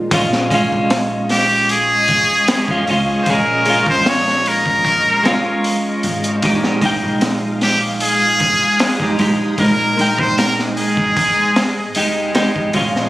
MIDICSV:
0, 0, Header, 1, 7, 480
1, 0, Start_track
1, 0, Tempo, 789474
1, 68, Time_signature, 4, 2, 24, 8
1, 7960, End_track
2, 0, Start_track
2, 0, Title_t, "String machine"
2, 0, Program_c, 0, 50
2, 68, Note_on_c, 0, 85, 85
2, 69, Note_on_c, 0, 75, 74
2, 70, Note_on_c, 0, 56, 76
2, 3884, Note_off_c, 0, 75, 0
2, 3884, Note_off_c, 0, 85, 0
2, 3908, Note_on_c, 0, 77, 76
2, 3908, Note_on_c, 0, 87, 94
2, 5809, Note_off_c, 0, 77, 0
2, 5827, Note_on_c, 0, 75, 70
2, 7724, Note_off_c, 0, 87, 0
2, 7749, Note_on_c, 0, 73, 89
2, 7960, Note_off_c, 0, 56, 0
2, 7960, Note_off_c, 0, 73, 0
2, 7960, Note_off_c, 0, 75, 0
2, 7960, End_track
3, 0, Start_track
3, 0, Title_t, "Synth texture"
3, 0, Program_c, 1, 99
3, 7748, Note_on_c, 1, 84, 86
3, 7749, Note_on_c, 1, 61, 82
3, 7960, Note_off_c, 1, 61, 0
3, 7960, Note_off_c, 1, 84, 0
3, 7960, End_track
4, 0, Start_track
4, 0, Title_t, "Muted trumpet"
4, 0, Program_c, 2, 59
4, 798, Note_on_c, 2, 67, 98
4, 1017, Note_off_c, 2, 67, 0
4, 1039, Note_on_c, 2, 68, 117
4, 1729, Note_off_c, 2, 68, 0
4, 1958, Note_on_c, 2, 72, 73
4, 2007, Note_on_c, 2, 70, 96
4, 2016, Note_off_c, 2, 72, 0
4, 2363, Note_off_c, 2, 70, 0
4, 2370, Note_on_c, 2, 72, 97
4, 2485, Note_on_c, 2, 73, 102
4, 2494, Note_off_c, 2, 72, 0
4, 2724, Note_on_c, 2, 70, 95
4, 2733, Note_off_c, 2, 73, 0
4, 3436, Note_off_c, 2, 70, 0
4, 4639, Note_on_c, 2, 67, 99
4, 4737, Note_off_c, 2, 67, 0
4, 4879, Note_on_c, 2, 68, 119
4, 5569, Note_off_c, 2, 68, 0
4, 5838, Note_on_c, 2, 70, 105
4, 6200, Note_on_c, 2, 72, 97
4, 6209, Note_off_c, 2, 70, 0
4, 6308, Note_off_c, 2, 72, 0
4, 6311, Note_on_c, 2, 70, 101
4, 6409, Note_off_c, 2, 70, 0
4, 6553, Note_on_c, 2, 68, 91
4, 7246, Note_off_c, 2, 68, 0
4, 7960, End_track
5, 0, Start_track
5, 0, Title_t, "Clean electric guitar"
5, 0, Program_c, 3, 27
5, 71, Note_on_c, 3, 56, 75
5, 78, Note_on_c, 3, 61, 68
5, 85, Note_on_c, 3, 65, 80
5, 282, Note_off_c, 3, 56, 0
5, 286, Note_off_c, 3, 61, 0
5, 289, Note_off_c, 3, 65, 0
5, 307, Note_on_c, 3, 56, 101
5, 318, Note_on_c, 3, 61, 90
5, 331, Note_on_c, 3, 65, 112
5, 1603, Note_off_c, 3, 56, 0
5, 1609, Note_off_c, 3, 61, 0
5, 1615, Note_off_c, 3, 65, 0
5, 1636, Note_on_c, 3, 56, 83
5, 1642, Note_on_c, 3, 61, 76
5, 1648, Note_on_c, 3, 65, 93
5, 1722, Note_off_c, 3, 56, 0
5, 1725, Note_off_c, 3, 61, 0
5, 1728, Note_off_c, 3, 65, 0
5, 1755, Note_on_c, 3, 56, 88
5, 1760, Note_on_c, 3, 61, 84
5, 1767, Note_on_c, 3, 65, 104
5, 1964, Note_off_c, 3, 56, 0
5, 1967, Note_off_c, 3, 61, 0
5, 1970, Note_off_c, 3, 65, 0
5, 1996, Note_on_c, 3, 56, 94
5, 2001, Note_on_c, 3, 61, 84
5, 2007, Note_on_c, 3, 68, 96
5, 2204, Note_off_c, 3, 56, 0
5, 2207, Note_off_c, 3, 61, 0
5, 2210, Note_off_c, 3, 68, 0
5, 2225, Note_on_c, 3, 56, 85
5, 2237, Note_on_c, 3, 61, 75
5, 2247, Note_on_c, 3, 65, 93
5, 3159, Note_off_c, 3, 56, 0
5, 3165, Note_off_c, 3, 61, 0
5, 3170, Note_off_c, 3, 65, 0
5, 3182, Note_on_c, 3, 56, 89
5, 3195, Note_on_c, 3, 61, 84
5, 3208, Note_on_c, 3, 65, 106
5, 3878, Note_off_c, 3, 56, 0
5, 3884, Note_off_c, 3, 61, 0
5, 3890, Note_off_c, 3, 65, 0
5, 3910, Note_on_c, 3, 56, 76
5, 3918, Note_on_c, 3, 63, 71
5, 3924, Note_on_c, 3, 67, 88
5, 4122, Note_off_c, 3, 56, 0
5, 4126, Note_off_c, 3, 63, 0
5, 4129, Note_off_c, 3, 67, 0
5, 4145, Note_on_c, 3, 56, 100
5, 4157, Note_on_c, 3, 63, 91
5, 4168, Note_on_c, 3, 79, 110
5, 5442, Note_off_c, 3, 56, 0
5, 5448, Note_off_c, 3, 63, 0
5, 5454, Note_off_c, 3, 79, 0
5, 5476, Note_on_c, 3, 56, 84
5, 5482, Note_on_c, 3, 63, 72
5, 5488, Note_on_c, 3, 67, 92
5, 5562, Note_off_c, 3, 56, 0
5, 5565, Note_off_c, 3, 63, 0
5, 5568, Note_off_c, 3, 67, 0
5, 5590, Note_on_c, 3, 56, 94
5, 5595, Note_on_c, 3, 63, 83
5, 5601, Note_on_c, 3, 67, 98
5, 5802, Note_off_c, 3, 56, 0
5, 5804, Note_off_c, 3, 63, 0
5, 5807, Note_off_c, 3, 67, 0
5, 5832, Note_on_c, 3, 56, 90
5, 5837, Note_on_c, 3, 63, 84
5, 5842, Note_on_c, 3, 70, 100
5, 6043, Note_off_c, 3, 56, 0
5, 6045, Note_off_c, 3, 63, 0
5, 6048, Note_off_c, 3, 70, 0
5, 6064, Note_on_c, 3, 56, 85
5, 6075, Note_on_c, 3, 63, 82
5, 6087, Note_on_c, 3, 79, 98
5, 6999, Note_off_c, 3, 56, 0
5, 7004, Note_off_c, 3, 63, 0
5, 7010, Note_off_c, 3, 79, 0
5, 7270, Note_on_c, 3, 56, 80
5, 7274, Note_on_c, 3, 63, 75
5, 7281, Note_on_c, 3, 67, 89
5, 7482, Note_off_c, 3, 56, 0
5, 7484, Note_off_c, 3, 63, 0
5, 7487, Note_off_c, 3, 67, 0
5, 7506, Note_on_c, 3, 56, 93
5, 7512, Note_on_c, 3, 63, 82
5, 7519, Note_on_c, 3, 67, 102
5, 7720, Note_off_c, 3, 56, 0
5, 7723, Note_off_c, 3, 63, 0
5, 7726, Note_off_c, 3, 67, 0
5, 7747, Note_on_c, 3, 56, 80
5, 7752, Note_on_c, 3, 61, 68
5, 7759, Note_on_c, 3, 65, 80
5, 7960, Note_off_c, 3, 56, 0
5, 7960, Note_off_c, 3, 61, 0
5, 7960, Note_off_c, 3, 65, 0
5, 7960, End_track
6, 0, Start_track
6, 0, Title_t, "Upright bass"
6, 0, Program_c, 4, 32
6, 69, Note_on_c, 4, 34, 93
6, 410, Note_off_c, 4, 34, 0
6, 438, Note_on_c, 4, 34, 90
6, 1372, Note_off_c, 4, 34, 0
6, 1750, Note_on_c, 4, 37, 88
6, 1860, Note_off_c, 4, 37, 0
6, 1988, Note_on_c, 4, 34, 96
6, 2330, Note_off_c, 4, 34, 0
6, 2351, Note_on_c, 4, 34, 84
6, 3288, Note_off_c, 4, 34, 0
6, 3672, Note_on_c, 4, 32, 90
6, 3883, Note_off_c, 4, 32, 0
6, 3911, Note_on_c, 4, 34, 101
6, 4251, Note_off_c, 4, 34, 0
6, 4277, Note_on_c, 4, 34, 88
6, 5211, Note_off_c, 4, 34, 0
6, 5588, Note_on_c, 4, 34, 91
6, 5699, Note_off_c, 4, 34, 0
6, 5825, Note_on_c, 4, 34, 102
6, 6168, Note_off_c, 4, 34, 0
6, 6194, Note_on_c, 4, 34, 86
6, 7272, Note_off_c, 4, 34, 0
6, 7272, Note_on_c, 4, 29, 82
6, 7728, Note_off_c, 4, 29, 0
6, 7748, Note_on_c, 4, 34, 98
6, 7960, Note_off_c, 4, 34, 0
6, 7960, End_track
7, 0, Start_track
7, 0, Title_t, "Drums"
7, 69, Note_on_c, 9, 36, 114
7, 69, Note_on_c, 9, 46, 89
7, 130, Note_off_c, 9, 36, 0
7, 130, Note_off_c, 9, 46, 0
7, 199, Note_on_c, 9, 38, 43
7, 260, Note_off_c, 9, 38, 0
7, 307, Note_on_c, 9, 36, 101
7, 311, Note_on_c, 9, 46, 59
7, 368, Note_off_c, 9, 36, 0
7, 372, Note_off_c, 9, 46, 0
7, 549, Note_on_c, 9, 46, 88
7, 551, Note_on_c, 9, 38, 107
7, 610, Note_off_c, 9, 46, 0
7, 612, Note_off_c, 9, 38, 0
7, 786, Note_on_c, 9, 46, 82
7, 793, Note_on_c, 9, 38, 45
7, 847, Note_off_c, 9, 46, 0
7, 853, Note_off_c, 9, 38, 0
7, 1028, Note_on_c, 9, 46, 76
7, 1089, Note_off_c, 9, 46, 0
7, 1263, Note_on_c, 9, 46, 54
7, 1270, Note_on_c, 9, 36, 81
7, 1324, Note_off_c, 9, 46, 0
7, 1331, Note_off_c, 9, 36, 0
7, 1507, Note_on_c, 9, 46, 88
7, 1511, Note_on_c, 9, 38, 126
7, 1567, Note_off_c, 9, 46, 0
7, 1571, Note_off_c, 9, 38, 0
7, 1631, Note_on_c, 9, 36, 93
7, 1692, Note_off_c, 9, 36, 0
7, 1747, Note_on_c, 9, 46, 65
7, 1808, Note_off_c, 9, 46, 0
7, 1983, Note_on_c, 9, 46, 83
7, 1985, Note_on_c, 9, 36, 110
7, 2043, Note_off_c, 9, 46, 0
7, 2046, Note_off_c, 9, 36, 0
7, 2222, Note_on_c, 9, 46, 64
7, 2282, Note_off_c, 9, 46, 0
7, 2349, Note_on_c, 9, 36, 90
7, 2410, Note_off_c, 9, 36, 0
7, 2469, Note_on_c, 9, 38, 103
7, 2472, Note_on_c, 9, 46, 84
7, 2530, Note_off_c, 9, 38, 0
7, 2532, Note_off_c, 9, 46, 0
7, 2601, Note_on_c, 9, 38, 39
7, 2662, Note_off_c, 9, 38, 0
7, 2710, Note_on_c, 9, 46, 72
7, 2771, Note_off_c, 9, 46, 0
7, 2831, Note_on_c, 9, 36, 86
7, 2892, Note_off_c, 9, 36, 0
7, 2947, Note_on_c, 9, 36, 97
7, 2954, Note_on_c, 9, 46, 76
7, 3008, Note_off_c, 9, 36, 0
7, 3015, Note_off_c, 9, 46, 0
7, 3193, Note_on_c, 9, 46, 66
7, 3196, Note_on_c, 9, 38, 106
7, 3254, Note_off_c, 9, 46, 0
7, 3256, Note_off_c, 9, 38, 0
7, 3431, Note_on_c, 9, 46, 82
7, 3491, Note_off_c, 9, 46, 0
7, 3668, Note_on_c, 9, 46, 64
7, 3728, Note_off_c, 9, 46, 0
7, 3793, Note_on_c, 9, 42, 43
7, 3853, Note_off_c, 9, 42, 0
7, 3906, Note_on_c, 9, 46, 84
7, 3909, Note_on_c, 9, 36, 111
7, 3967, Note_off_c, 9, 46, 0
7, 3970, Note_off_c, 9, 36, 0
7, 4037, Note_on_c, 9, 38, 40
7, 4097, Note_off_c, 9, 38, 0
7, 4143, Note_on_c, 9, 36, 93
7, 4144, Note_on_c, 9, 46, 68
7, 4204, Note_off_c, 9, 36, 0
7, 4205, Note_off_c, 9, 46, 0
7, 4385, Note_on_c, 9, 46, 81
7, 4390, Note_on_c, 9, 38, 105
7, 4445, Note_off_c, 9, 46, 0
7, 4450, Note_off_c, 9, 38, 0
7, 4628, Note_on_c, 9, 46, 76
7, 4631, Note_on_c, 9, 38, 49
7, 4689, Note_off_c, 9, 46, 0
7, 4692, Note_off_c, 9, 38, 0
7, 4866, Note_on_c, 9, 46, 92
7, 4927, Note_off_c, 9, 46, 0
7, 5105, Note_on_c, 9, 46, 57
7, 5111, Note_on_c, 9, 36, 93
7, 5166, Note_off_c, 9, 46, 0
7, 5171, Note_off_c, 9, 36, 0
7, 5347, Note_on_c, 9, 46, 90
7, 5352, Note_on_c, 9, 38, 111
7, 5408, Note_off_c, 9, 46, 0
7, 5413, Note_off_c, 9, 38, 0
7, 5471, Note_on_c, 9, 36, 86
7, 5531, Note_off_c, 9, 36, 0
7, 5586, Note_on_c, 9, 46, 72
7, 5647, Note_off_c, 9, 46, 0
7, 5824, Note_on_c, 9, 36, 100
7, 5825, Note_on_c, 9, 46, 90
7, 5885, Note_off_c, 9, 36, 0
7, 5886, Note_off_c, 9, 46, 0
7, 6073, Note_on_c, 9, 46, 62
7, 6134, Note_off_c, 9, 46, 0
7, 6193, Note_on_c, 9, 36, 97
7, 6254, Note_off_c, 9, 36, 0
7, 6310, Note_on_c, 9, 46, 85
7, 6316, Note_on_c, 9, 38, 98
7, 6371, Note_off_c, 9, 46, 0
7, 6377, Note_off_c, 9, 38, 0
7, 6441, Note_on_c, 9, 38, 39
7, 6502, Note_off_c, 9, 38, 0
7, 6548, Note_on_c, 9, 46, 69
7, 6609, Note_off_c, 9, 46, 0
7, 6671, Note_on_c, 9, 36, 80
7, 6732, Note_off_c, 9, 36, 0
7, 6789, Note_on_c, 9, 46, 92
7, 6790, Note_on_c, 9, 36, 102
7, 6850, Note_off_c, 9, 36, 0
7, 6850, Note_off_c, 9, 46, 0
7, 7029, Note_on_c, 9, 46, 59
7, 7030, Note_on_c, 9, 38, 107
7, 7090, Note_off_c, 9, 46, 0
7, 7091, Note_off_c, 9, 38, 0
7, 7264, Note_on_c, 9, 46, 97
7, 7325, Note_off_c, 9, 46, 0
7, 7507, Note_on_c, 9, 46, 74
7, 7512, Note_on_c, 9, 38, 109
7, 7568, Note_off_c, 9, 46, 0
7, 7573, Note_off_c, 9, 38, 0
7, 7635, Note_on_c, 9, 36, 87
7, 7696, Note_off_c, 9, 36, 0
7, 7742, Note_on_c, 9, 46, 85
7, 7745, Note_on_c, 9, 36, 112
7, 7803, Note_off_c, 9, 46, 0
7, 7806, Note_off_c, 9, 36, 0
7, 7880, Note_on_c, 9, 38, 41
7, 7940, Note_off_c, 9, 38, 0
7, 7960, End_track
0, 0, End_of_file